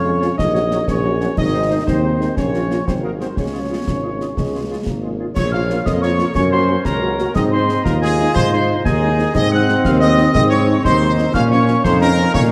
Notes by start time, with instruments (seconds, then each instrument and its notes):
Already playing: tuba F2, euphonium C#4, trumpet section C#5
0.04 french horn section G#3 C#4 F4, woodwind section F4 C#5
0.20 trombone section F3 C#4, french horn section G#3 C#4 F4, woodwind section F4 C#5, snare
0.38 tuba A#1, euphonium D#4, trumpet section D#5, concert bass drum, snare
0.53 french horn section F#3 C#4 F#4, woodwind section F#4 C#5, snare
0.71 trombone section F#3 C#4, french horn section F#3 C#4 F#4, woodwind section F#4 C#5, snare
0.88 tuba A#1, euphonium C#4, trumpet section C#5, concert bass drum, snare
1.04 french horn section F#3 C#4 F#4, woodwind section F#4 C#5
1.20 trombone section F#3 C#4, french horn section F#3 C#4 F#4, woodwind section F#4 C#5, snare
1.37 tuba G#1, trombone section D#3 C4, euphonium D#4, trumpet section D#5, concert bass drum, snare, crash
1.54 french horn section G#3 C4 D#4, woodwind section D#4 C5
1.69 french horn section G#3 C4 D#4, woodwind section D#4 C5
1.86 tuba D#2, trombone section D#3 C4, euphonium C4, trumpet section C5, concert bass drum, snare
2.03 french horn section G#3 C4 D#4, woodwind section D#4 C5
2.20 french horn section G#3 C4 D#4, woodwind section D#4 C5, snare
2.36 tuba A#1, trombone section F3 A#3, euphonium C#4, trumpet section C#5, concert bass drum, snare
2.54 french horn section F3 C#4 F4, woodwind section F4 A#4, snare
2.70 french horn section F3 C#4 F4, woodwind section F4 A#4, snare
2.86 tuba G#1, trombone section F#3 G#3, euphonium C4, trumpet section C5, concert bass drum, snare
3.03 french horn section G#3 D#4 F#4, euphonium A#3, woodwind section F#4 G#4, trumpet section A#4
3.19 french horn section G#3 D#4 F#4, euphonium C4, woodwind section F#4 G#4, trumpet section C5, snare
3.36 tuba C#2, trombone section F3 G#3, euphonium C#4, trumpet section C#5, concert bass drum, snare
3.53 french horn section G#3 C#4 F4, woodwind section F4 G#4
3.70 french horn section G#3 C#4 F4, woodwind section F4 G#4
3.87 tuba G#1, trombone section C#4, concert bass drum, snare
4.02 french horn section G#3 C#4 F4, woodwind section F4 G#4
4.20 french horn section G#3 C#4 F4, woodwind section F4 G#4, snare
4.36 tuba C#2, trombone section G#3, concert bass drum, snare
4.53 french horn section G#3 C#4 F4, woodwind section F4 G#4
4.70 french horn section G#3 C#4 F4, woodwind section F4 G#4
4.86 tuba G#1, trombone section A#3, concert bass drum, snare
5.02 french horn section G#3 C#4 F4, woodwind section F4 G#4
5.19 french horn section G#3 C#4 F4, woodwind section F4 G#4
5.34 tuba A#1, woodwind section F4 C#5, trumpet section C#5, piccolo C#6, concert bass drum, snare, crash
5.52 french horn section A#3 C#4 F4, trumpet section F5, piccolo F6
5.69 french horn section A#3 C#4 F4, snare
5.85 tuba F2, trombone section A#3, trumpet section D#5, piccolo D#6, concert bass drum, snare
6.01 french horn section A#3 C#4 F4, trumpet section C#5, piccolo C#6, snare
6.18 french horn section A#3 C#4 F4, snare
6.35 tuba F#2, trombone section C#4, woodwind section F#4 C#5, trumpet section C#5, piccolo C#6, concert bass drum, snare
6.51 french horn section A#3 C#4 F#4, trumpet section C5, piccolo C6
6.69 french horn section A#3 C#4 F#4
6.84 tuba C#2, woodwind section F#4 C#5, trumpet section A#4, piccolo A#5, concert bass drum, snare
7.01 french horn section A#3 C#4 F#4
7.19 french horn section A#3 C#4 F#4, snare
7.34 tuba G#2, trombone section C4, woodwind section D#4 D#5, trumpet section D#5, piccolo D#6, concert bass drum, snare
7.51 french horn section G#3 C4 D#4, trumpet section C5, piccolo C6
7.69 french horn section G#3 C4 D#4, snare
7.84 tuba D#2, trombone section F4, trumpet section A#4, piccolo A#5, concert bass drum, snare
8.01 french horn section G#3 C4 D#4, trumpet section G#4, piccolo G#5, snare
8.19 french horn section G#3 C4 D#4, snare
8.35 tuba G#2, woodwind section D#4 D#5, trumpet section C5, piccolo C6, concert bass drum, snare
8.52 french horn section G#3 C4 D#4, trumpet section C5, piccolo C6
8.70 french horn section G#3 C4 D#4
8.84 tuba D#2, woodwind section D#4 D#5, trombone section D#4, trumpet section G#4, piccolo G#5, concert bass drum, snare
9.02 french horn section G#3 C4 D#4
9.19 french horn section G#3 C4 D#4, snare
9.33 tuba G#2, trombone section C4, woodwind section C4 D#5, trumpet section D#5, piccolo D#6, concert bass drum, snare, crash
9.52 french horn section G#3 C4 D#4, trumpet section F#5, piccolo F#6
9.69 french horn section G#3 C4 D#4, snare
9.85 tuba D#2, trumpet section F5, piccolo F6, concert bass drum, snare
10.00 french horn section G#3 C4 D#4, trumpet section D#5, piccolo D#6, snare
10.18 french horn section G#3 C4 D#4, snare
10.35 tuba G#2, woodwind section C4 D#5, trumpet section D#5, piccolo D#6, concert bass drum, snare
10.50 french horn section G#3 C4 D#4, trumpet section C#5, piccolo C#6
10.68 french horn section G#3 C4 D#4
10.83 tuba D#2, woodwind section C4 D#5, trombone section D#4, trumpet section C5, piccolo C6, concert bass drum, snare
11.01 french horn section G#3 C4 D#4
11.18 french horn section G#3 C4 D#4, snare
11.33 tuba A#2, trombone section C#4, woodwind section C#4 F5, trumpet section F5, piccolo F6, concert bass drum, snare
11.51 french horn section F3 C#4, trumpet section C#5, piccolo C#6
11.68 french horn section F3 C#4, snare
11.83 tuba F2, trombone section D#4, trumpet section C5, piccolo C6, concert bass drum, snare
12.01 french horn section F3 C#4, trumpet section A#4, piccolo A#5, snare
12.18 french horn section F3 C#4, snare
12.34 tuba A#2, woodwind section C#4 F5, trumpet section C#5, piccolo C#6, concert bass drum, snare